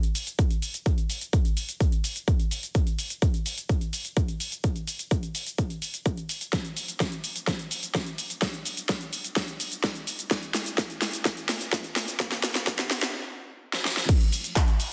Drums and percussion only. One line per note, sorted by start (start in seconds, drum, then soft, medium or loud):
0.03 closed hi-hat soft
0.03 shaker soft
0.15 open hi-hat loud
0.15 shaker medium
0.27 closed hi-hat soft
0.27 shaker soft
0.39 kick loud
0.39 closed hi-hat medium
0.39 shaker soft
0.51 closed hi-hat soft
0.51 shaker soft
0.62 open hi-hat medium
0.62 shaker medium
0.74 closed hi-hat soft
0.74 shaker soft
0.86 kick loud
0.86 closed hi-hat medium
0.86 shaker soft
0.98 closed hi-hat soft
0.98 shaker soft
1.10 open hi-hat loud
1.10 shaker medium
1.21 closed hi-hat soft
1.21 shaker soft
1.33 kick loud
1.33 closed hi-hat medium
1.33 shaker soft
1.45 closed hi-hat soft
1.45 shaker soft
1.57 open hi-hat loud
1.57 shaker medium
1.69 closed hi-hat soft
1.69 shaker soft
1.80 kick loud
1.80 closed hi-hat medium
1.80 shaker soft
1.92 closed hi-hat soft
1.92 shaker soft
2.04 open hi-hat loud
2.04 shaker medium
2.16 closed hi-hat soft
2.16 shaker soft
2.28 kick loud
2.28 closed hi-hat medium
2.28 shaker soft
2.40 closed hi-hat soft
2.40 shaker soft
2.51 open hi-hat loud
2.51 shaker medium
2.63 closed hi-hat soft
2.63 shaker soft
2.75 kick loud
2.75 closed hi-hat medium
2.75 shaker soft
2.87 closed hi-hat soft
2.87 shaker soft
2.99 open hi-hat loud
2.99 shaker medium
3.10 closed hi-hat soft
3.10 shaker soft
3.22 kick loud
3.22 closed hi-hat medium
3.22 shaker soft
3.34 closed hi-hat soft
3.34 shaker soft
3.46 open hi-hat loud
3.46 shaker medium
3.58 closed hi-hat soft
3.58 shaker soft
3.69 kick loud
3.69 closed hi-hat medium
3.69 shaker soft
3.81 closed hi-hat soft
3.81 shaker soft
3.93 open hi-hat loud
3.93 shaker medium
4.05 closed hi-hat soft
4.05 shaker soft
4.17 kick loud
4.17 closed hi-hat medium
4.17 shaker soft
4.28 closed hi-hat soft
4.28 shaker soft
4.40 open hi-hat loud
4.40 shaker medium
4.52 closed hi-hat soft
4.52 shaker soft
4.64 kick loud
4.64 closed hi-hat medium
4.64 shaker soft
4.76 closed hi-hat soft
4.76 shaker soft
4.87 open hi-hat loud
4.87 shaker medium
4.99 closed hi-hat soft
4.99 shaker soft
5.11 kick loud
5.11 closed hi-hat medium
5.11 shaker soft
5.23 closed hi-hat soft
5.23 shaker soft
5.35 open hi-hat loud
5.35 shaker medium
5.47 closed hi-hat soft
5.47 shaker soft
5.58 kick loud
5.58 closed hi-hat medium
5.58 shaker soft
5.70 closed hi-hat soft
5.70 shaker soft
5.82 open hi-hat loud
5.82 shaker medium
5.94 closed hi-hat soft
5.94 shaker soft
6.06 kick loud
6.06 closed hi-hat medium
6.06 shaker soft
6.17 closed hi-hat soft
6.17 shaker soft
6.29 open hi-hat loud
6.29 shaker medium
6.41 closed hi-hat soft
6.41 shaker soft
6.53 kick loud
6.53 snare soft
6.53 closed hi-hat medium
6.53 shaker soft
6.65 closed hi-hat soft
6.65 shaker soft
6.77 open hi-hat loud
6.77 shaker medium
6.88 closed hi-hat soft
6.88 shaker soft
7.00 kick loud
7.00 snare soft
7.00 closed hi-hat medium
7.00 shaker soft
7.12 closed hi-hat soft
7.12 shaker soft
7.24 open hi-hat loud
7.24 shaker medium
7.36 closed hi-hat soft
7.36 shaker soft
7.47 kick loud
7.47 snare medium
7.47 closed hi-hat medium
7.47 shaker soft
7.59 closed hi-hat soft
7.59 shaker soft
7.71 open hi-hat loud
7.71 shaker medium
7.83 closed hi-hat soft
7.83 shaker soft
7.95 kick loud
7.95 snare medium
7.95 closed hi-hat medium
7.95 shaker soft
8.06 closed hi-hat soft
8.06 shaker soft
8.18 open hi-hat loud
8.18 shaker medium
8.30 closed hi-hat soft
8.30 shaker soft
8.42 kick loud
8.42 snare medium
8.42 closed hi-hat medium
8.42 shaker soft
8.54 closed hi-hat soft
8.54 shaker soft
8.65 open hi-hat loud
8.65 shaker medium
8.77 closed hi-hat soft
8.77 shaker soft
8.89 kick loud
8.89 snare medium
8.89 closed hi-hat medium
8.89 shaker soft
9.01 closed hi-hat soft
9.01 shaker soft
9.13 open hi-hat loud
9.13 shaker medium
9.25 closed hi-hat soft
9.25 shaker soft
9.36 kick loud
9.36 snare medium
9.36 closed hi-hat medium
9.36 shaker soft
9.48 closed hi-hat soft
9.48 shaker soft
9.60 open hi-hat loud
9.60 shaker medium
9.72 closed hi-hat soft
9.72 shaker soft
9.84 kick loud
9.84 snare medium
9.84 closed hi-hat medium
9.84 shaker soft
9.95 closed hi-hat soft
9.95 shaker soft
10.07 open hi-hat loud
10.07 shaker medium
10.19 closed hi-hat soft
10.19 shaker soft
10.31 kick loud
10.31 snare medium
10.31 closed hi-hat medium
10.31 shaker soft
10.43 closed hi-hat soft
10.43 shaker soft
10.54 snare medium
10.54 open hi-hat medium
10.54 shaker medium
10.66 closed hi-hat soft
10.66 shaker soft
10.78 kick loud
10.78 snare medium
10.78 closed hi-hat medium
10.78 shaker soft
10.90 closed hi-hat soft
10.90 shaker soft
11.02 snare medium
11.02 open hi-hat loud
11.02 shaker medium
11.13 closed hi-hat soft
11.13 shaker soft
11.25 kick loud
11.25 snare medium
11.25 closed hi-hat medium
11.25 shaker soft
11.37 closed hi-hat soft
11.37 shaker soft
11.49 snare medium
11.49 open hi-hat loud
11.49 shaker medium
11.61 closed hi-hat soft
11.61 shaker soft
11.73 kick loud
11.73 snare medium
11.73 closed hi-hat medium
11.73 shaker soft
11.84 closed hi-hat soft
11.84 shaker soft
11.96 snare medium
11.96 open hi-hat loud
11.96 shaker medium
12.08 closed hi-hat soft
12.08 shaker soft
12.20 kick loud
12.20 snare medium
12.20 closed hi-hat medium
12.20 shaker soft
12.32 snare medium
12.32 closed hi-hat soft
12.32 shaker soft
12.43 snare medium
12.43 open hi-hat loud
12.43 shaker medium
12.55 snare medium
12.55 closed hi-hat soft
12.55 shaker soft
12.67 kick loud
12.67 snare loud
12.67 closed hi-hat medium
12.67 shaker soft
12.79 snare medium
12.79 closed hi-hat soft
12.79 shaker soft
12.91 snare loud
12.91 open hi-hat loud
12.91 shaker medium
13.02 snare medium
13.02 closed hi-hat soft
13.02 shaker soft
13.73 snare medium
13.85 snare medium
13.97 snare medium
14.09 kick loud
14.09 closed hi-hat medium
14.09 crash loud
14.09 shaker soft
14.21 closed hi-hat soft
14.21 shaker soft
14.32 open hi-hat loud
14.32 shaker medium
14.44 closed hi-hat soft
14.44 shaker soft
14.56 kick loud
14.56 clap loud
14.56 closed hi-hat loud
14.56 shaker soft
14.68 closed hi-hat soft
14.68 shaker soft
14.80 open hi-hat loud
14.80 shaker medium